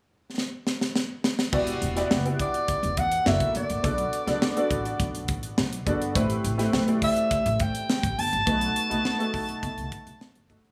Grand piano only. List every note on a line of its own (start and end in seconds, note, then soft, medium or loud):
1.52 1.79 B3 medium
1.52 1.79 E4 medium
1.52 1.79 F#4 medium
1.52 1.79 G4 medium
1.52 1.80 D5 medium
1.96 2.14 B3 medium
1.96 2.14 E4 medium
1.96 2.14 F#4 medium
1.96 2.14 G4 medium
1.96 2.14 D5 medium
2.25 2.96 B3 medium
2.25 2.96 E4 medium
2.25 2.96 F#4 medium
2.25 2.96 G4 medium
2.25 2.96 D5 medium
3.25 3.72 A#3 medium
3.25 3.72 E4 medium
3.25 3.72 F#4 medium
3.25 3.72 A4 medium
3.25 3.72 D5 medium
3.82 4.10 B3 medium
3.82 4.10 D4 medium
3.82 4.10 F#4 medium
3.82 4.10 A4 medium
3.82 4.10 D5 medium
4.26 4.45 B3 medium
4.26 4.45 D4 medium
4.26 4.45 F#4 medium
4.26 4.45 A4 medium
4.26 4.45 D5 medium
4.56 5.27 B3 medium
4.56 5.27 D4 medium
4.56 5.27 F#4 medium
4.56 5.27 A4 medium
4.56 5.28 D5 medium
5.86 6.04 B3 medium
5.86 6.04 D4 medium
5.86 6.04 F#4 medium
5.86 6.04 A4 medium
5.86 6.05 D5 medium
6.15 6.42 A3 medium
6.15 6.42 C4 medium
6.15 6.42 E4 medium
6.15 6.42 G4 medium
6.15 6.42 B4 medium
6.58 6.76 A3 medium
6.58 6.76 C4 medium
6.58 6.76 E4 medium
6.58 6.77 G4 medium
6.58 6.77 B4 medium
6.87 7.58 A3 medium
6.87 7.59 C4 medium
6.87 7.59 E4 medium
6.87 7.59 G4 medium
6.87 7.59 D5 medium
8.46 8.73 A3 medium
8.46 8.73 B3 medium
8.46 8.73 D#4 medium
8.46 8.74 F#4 medium
8.46 8.74 B4 medium
8.89 9.08 A3 medium
8.89 9.08 B3 medium
8.89 9.08 D#4 medium
8.89 9.08 F#4 medium
8.89 9.08 B4 medium
9.19 9.90 A3 medium
9.19 9.90 B3 medium
9.19 9.90 D#4 medium
9.19 9.90 F#4 medium
9.19 9.91 A4 medium
10.49 10.67 A3 medium
10.49 10.67 B3 medium
10.49 10.67 D#4 medium
10.49 10.68 F#4 medium
10.49 10.68 A4 medium